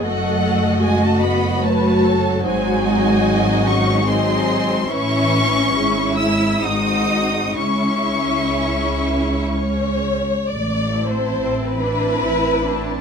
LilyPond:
<<
  \new Staff \with { instrumentName = "Violin section" } { \time 3/4 \key cis \minor \tempo 4 = 71 fis''4 gis''16 a''16 b''8 a''4 | gis''4. cis'''8 bis''4 | cis'''4. e'''8 dis'''4 | cis'''2~ cis'''8 r8 |
\key a \minor r8 a''4 a''4 a''8 | }
  \new Staff \with { instrumentName = "Violin section" } { \time 3/4 \key cis \minor << { dis''2 cis''4 | bis'8 dis''4. dis''4 | e''4 e''4 dis''4 | e''2 cis''4 |
\key a \minor \tuplet 3/2 { d''4 c''8~ c''8 b'4~ } b'4 | } \\ { fis'8 fis'4. b'8 a'8 | fis'2 gis'4 | e'4 e'4 fis'4 | e'2 r4 |
r2. | } >> }
  \new Staff \with { instrumentName = "Viola section" } { \time 3/4 \key cis \minor << { a'4 fis'4 fis'4 | dis'2 dis'4 | cis'4 cis'4 bis4 | cis'2~ cis'8. r16 |
\key a \minor r8 e'4 e'4 e'8 | } \\ { a2 fis4~ | fis2 fis4 | e4 gis4 gis4 | gis2~ gis8. r16 |
r8 c'4 c'4 c'8 | } >> }
  \new Staff \with { instrumentName = "Cello section" } { \time 3/4 \key cis \minor fis4 gis16 a16 b8 a4 | gis4. cis'8 bis4 | cis'4. e'8 dis'4 | cis'2~ cis'8 r8 |
\key a \minor a4 c'8 d'8 e'8 d'8 | }
  \new Staff \with { instrumentName = "Double bass section" } { \clef bass \time 3/4 \key cis \minor fis,,2. | gis,,2. | a,,4 gis,,4 gis,,4 | cis,2~ cis,8. r16 |
\key a \minor a,,4 a,,4 a,,4 | }
>>